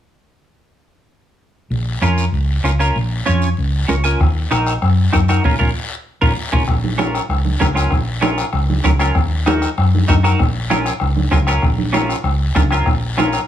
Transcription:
1.70 fingered electric bass A#1, long guiro
2.01 fingered electric bass F2, clean electric guitar C#4 F4 A#4, short guiro
2.18 short guiro
2.32 fingered electric bass C#2, long guiro
2.63 fingered electric bass C#2, clean electric guitar C#4 F4 A#4, short guiro
2.79 clean electric guitar C#4 F4 A#4, short guiro
2.95 fingered electric bass A#1, long guiro
3.26 fingered electric bass F2, clean electric guitar C#4 F4 C#5, short guiro
3.42 short guiro
3.57 fingered electric bass C#2, long guiro
3.88 fingered electric bass C#2, clean electric guitar C#4 F4 A#4 C#5, short guiro
4.04 clean electric guitar C#4 F4 A#4 G#5, short guiro
4.20 fingered electric bass D#2, bombo low, bombo rim, long guiro
4.51 fingered electric bass A#1, clean electric guitar D#4 F#4 A#4, bombo rim, short guiro
4.66 bombo rim, short guiro
4.82 fingered electric bass F#2, bombo rim, long guiro
5.12 fingered electric bass F#2, clean electric guitar D#4 F#4 A#4, bombo low, bombo rim, short guiro
5.28 clean electric guitar D#4 F#4 A#4, bombo rim, short guiro
5.44 fingered electric bass A#1, clean electric guitar C#4 F4 A#4, bombo low, long guiro
5.59 fingered electric bass A#1, clean electric guitar C#4 F4 A#4, bombo low, long guiro
6.21 fingered electric bass A#1, clean electric guitar C#4 F4 A#4, bombo low, long guiro
6.52 fingered electric bass A#1, clean electric guitar C#4 F4 A#4, bombo low, long guiro
6.68 fingered electric bass A#1, bombo low, bombo rim, high conga, long guiro
6.84 high conga
6.98 clean electric guitar C#4 F4 A#4, bombo rim, high conga, short guiro
7.15 bombo rim, short guiro
7.29 fingered electric bass C#2, bombo rim, high conga, long guiro
7.45 high conga
7.60 fingered electric bass C#2, clean electric guitar C#4 F4 A#4, bombo low, bombo rim, high conga, short guiro
7.74 clean electric guitar C#4 F4 A#4, bombo rim, short guiro
7.91 fingered electric bass A#1, bombo low, bombo rim, high conga, long guiro
8.21 clean electric guitar C#4 F4 A#4, bombo rim, high conga, short guiro
8.38 bombo rim, short guiro
8.53 fingered electric bass C#2, bombo rim, high conga, long guiro
8.70 high conga
8.84 fingered electric bass C#2, clean electric guitar C#4 F4 A#4, bombo low, bombo rim, high conga, short guiro
8.99 clean electric guitar C#4 F4 A#4, bombo rim, short guiro
9.15 fingered electric bass D#2, bombo low, bombo rim, high conga, long guiro
9.46 clean electric guitar D#4 F#4 A#4, bombo rim, high conga, short guiro
9.62 bombo rim, short guiro
9.78 fingered electric bass F#2, bombo rim, high conga, long guiro
9.95 high conga
10.08 fingered electric bass F#2, clean electric guitar D#4 F#4 A#4, bombo low, bombo rim, high conga, short guiro
10.23 clean electric guitar D#4 F#4 A#4, bombo rim, short guiro
10.39 fingered electric bass A#1, bombo low, bombo rim, high conga, long guiro
10.70 clean electric guitar C#4 F4 A#4, bombo rim, high conga, short guiro
10.86 bombo rim, short guiro
11.00 fingered electric bass C#2, bombo rim, high conga, long guiro
11.17 high conga
11.31 fingered electric bass C#2, clean electric guitar C#4 F4 A#4, bombo low, bombo rim, high conga, short guiro
11.47 clean electric guitar C#4 F4 A#4, bombo rim, short guiro
11.62 fingered electric bass A#1, bombo low, bombo rim, high conga, long guiro
11.78 high conga
11.93 clean electric guitar C#4 F4 A#4, bombo rim, high conga, short guiro
12.09 bombo rim, short guiro
12.23 fingered electric bass C#2, bombo rim, high conga, long guiro
12.55 fingered electric bass C#2, clean electric guitar C#4 F4 A#4, bombo low, bombo rim, high conga, short guiro
12.71 clean electric guitar C#4 F4 A#4, bombo rim, short guiro
12.86 fingered electric bass A#1, bombo low, bombo rim, high conga, long guiro
13.18 clean electric guitar C#4 F4 A#4, bombo rim, high conga, short guiro
13.33 bombo rim, short guiro

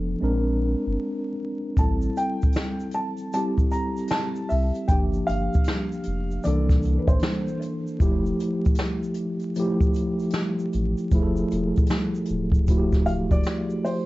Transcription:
Already playing: sub bass F1, tine electric piano F3 B3 D4 A4
0.21 sub bass A#1, tine electric piano G#3 C4 D4 A#4
0.86 sub bass G1
1.77 sub bass A1, tine electric piano G3 C4 E4 A4, felt piano A5, kick, closed hi-hat, shaker
2.02 shaker
2.16 felt piano G5, closed hi-hat, shaker
2.42 kick, closed hi-hat, shaker
2.52 snare, closed hi-hat, shaker
2.80 shaker
2.91 felt piano A5, closed hi-hat, shaker
3.16 closed hi-hat, shaker
3.33 tine electric piano G3 C4 E4 G4, felt piano A5, closed hi-hat, shaker
3.58 kick, shaker
3.71 felt piano A#5, closed hi-hat, shaker
3.97 closed hi-hat, shaker
4.07 felt piano A5, snare, closed hi-hat, shaker
4.35 shaker
4.49 sub bass C2, felt piano E5, open hi-hat, shaker
4.75 closed hi-hat, shaker
4.88 sub bass G1, tine electric piano F3 A#3 D4, felt piano G5, kick, closed hi-hat, shaker
4.92 tine electric piano G4
5.13 shaker
5.27 sub bass G1, felt piano F5, closed hi-hat, shaker
5.54 kick, shaker
5.64 snare, closed hi-hat, shaker
5.92 shaker
6.03 sub bass F1, closed hi-hat, shaker
6.31 shaker
6.44 sub bass C2, tine electric piano E3 A#3 D4 A4, felt piano D5, closed hi-hat, shaker
6.69 kick, snare, shaker
6.83 closed hi-hat, shaker
6.99 felt piano B4
7.08 sub bass A1, felt piano C5, kick, shaker
7.19 snare, closed hi-hat, shaker
7.48 shaker
7.62 closed hi-hat, shaker
7.87 shaker
7.99 sub bass F1, tine electric piano F3 A3 E4 G4, kick, closed hi-hat, shaker
8.26 shaker
8.40 closed hi-hat, shaker
8.65 kick, closed hi-hat, shaker
8.75 snare, closed hi-hat, shaker
9.03 shaker
9.14 closed hi-hat, shaker
9.39 closed hi-hat, shaker
9.55 tine electric piano F3 A3 E4, closed hi-hat, shaker
9.59 tine electric piano G4
9.81 kick, shaker
9.94 closed hi-hat, shaker
10.20 closed hi-hat, shaker
10.30 snare, closed hi-hat, shaker
10.59 shaker
10.73 sub bass A1, closed hi-hat, shaker
10.97 closed hi-hat, shaker
11.11 sub bass F1, tine electric piano F3 A3 E4, kick, closed hi-hat, shaker
11.15 tine electric piano G#4
11.22 tine electric piano A4
11.37 shaker
11.51 sub bass E1, closed hi-hat, shaker
11.76 kick, closed hi-hat, shaker
11.86 snare, closed hi-hat, shaker
12.15 shaker
12.25 closed hi-hat, shaker
12.30 sub bass D1
12.52 kick, shaker
12.67 tine electric piano F3 A3 E4 F#4, kick, closed hi-hat, shaker
12.77 tine electric piano G4
12.92 kick, snare, shaker
13.06 felt piano F5, closed hi-hat, shaker
13.31 sub bass E1, felt piano D5, kick, closed hi-hat, shaker
13.43 snare, closed hi-hat, shaker
13.70 shaker
13.85 felt piano C5, open hi-hat, shaker

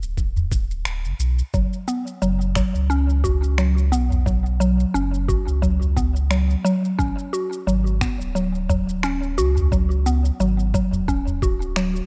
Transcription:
0.02 sub bass D1, shaker
0.17 kick, shaker
0.36 udu, shaker
0.52 kick, shaker
0.71 shaker
0.85 sub bass D1, finger snap, shaker
1.04 sub bass F#1, shaker
1.19 sub bass B1, shaker
1.39 shaker
1.54 sub bass F#1, synth pluck F#3, kick, shaker
1.73 shaker
1.88 synth pluck B3, shaker
2.07 shaker
2.22 sub bass F#1, synth pluck F#3, shaker
2.41 shaker
2.55 synth pluck F#3, finger snap, kick, shaker
2.75 sub bass C#2, shaker
2.90 synth pluck C#4, shaker
3.10 shaker
3.24 synth pluck F#4, kick, udu, shaker
3.44 shaker
3.58 synth pluck F#3, finger snap, shaker
3.78 shaker
3.92 sub bass B1, synth pluck B3, shaker
4.10 udu, shaker
4.26 synth pluck F#3, kick, shaker
4.46 shaker
4.60 synth pluck F#3, shaker
4.80 shaker
4.94 sub bass F#1, synth pluck C#4, shaker
5.14 shaker
5.28 synth pluck F#4, kick, shaker
5.47 sub bass C#2, shaker
5.62 synth pluck F#3, kick, shaker
5.81 udu, shaker
5.96 synth pluck B3, kick, shaker
6.16 shaker
6.30 synth pluck F#3, finger snap, shaker
6.50 shaker
6.64 synth pluck F#3, shaker
6.85 shaker
6.99 sub bass G#1, synth pluck C#4, kick, shaker
7.19 shaker
7.33 synth pluck F#4, shaker
7.53 shaker
7.67 sub bass G#1, synth pluck F#3, shaker
7.87 shaker
8.01 synth pluck B3, finger snap, kick, shaker
8.20 sub bass D1, shaker
8.35 synth pluck F#3, shaker
8.55 shaker
8.69 synth pluck F#3, kick, udu, shaker
8.89 shaker
9.03 synth pluck C#4, finger snap, shaker
9.23 shaker
9.37 sub bass C#2, synth pluck F#4, shaker
9.57 udu, shaker
9.72 synth pluck F#3, kick, shaker
9.91 shaker
10.06 synth pluck B3, shaker
10.25 shaker
10.40 sub bass G#1, synth pluck F#3, shaker
10.59 shaker
10.74 synth pluck F#3, kick, shaker
10.92 sub bass D1, udu, shaker
11.08 synth pluck C#4, kick, shaker
11.27 udu, shaker
11.42 synth pluck F#4, kick, shaker
11.62 shaker
11.76 synth pluck F#3, finger snap, shaker
11.96 shaker

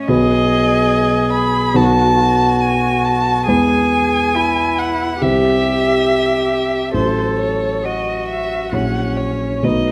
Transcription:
Already playing: grand piano A2 A3 G#4
0.07 grand piano B1 F#3 F#4 B4, cello G#4, violin D#5
1.32 violin B5
1.74 grand piano B1 F#3 D#4 B4, cello F#4, violin A5
2.19 cello F#4
2.61 violin G#5
3.05 violin A5
3.47 grand piano E2 G#3 E4 B4, cello G#4, violin G#5
4.35 cello E4
4.79 violin F#5
5.21 grand piano C2 G3 E4 C5, cello G4, violin E5
6.93 grand piano A1 F#3 E4 C5, cello A4, violin C5
7.40 violin C#5
7.85 cello F#4, violin D#5
8.29 violin E5
8.72 grand piano A#1 F#3 E4 C#5, cello C#4, violin F#5
9.17 violin C#5
9.63 grand piano B1 A3 F#4 B4, cello D#4, violin D#5

